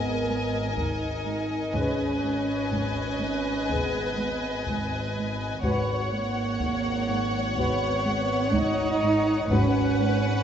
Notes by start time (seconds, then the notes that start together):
Already playing: G#1 B3 G#4 A#4 D#5 G#5
0.28 G#3
0.76 G#2 D#4, taiko
1.25 G#2
1.73 G#1 G#2 C#4 G#4 B4 D#5 G#5, taiko
2.23 G#2
2.72 G#2, taiko
3.21 G#2
3.69 G#2 B3 G#4 B4, taiko
4.18 G#3
4.66 G#2, taiko
5.15 G#2
5.63 G#1 G#2 F#4 B4 C#5 F#5, taiko
6.11 G#2 A#3
6.60 G#2, taiko
7.08 G#2
7.56 G#2 B3 F#4 B4, taiko
8.05 G#3
8.53 G#2 D#4, taiko
9.02 G#2
9.49 G#1 G#2 C#4 F#4 B4 C#5 F#5, taiko
9.99 G#2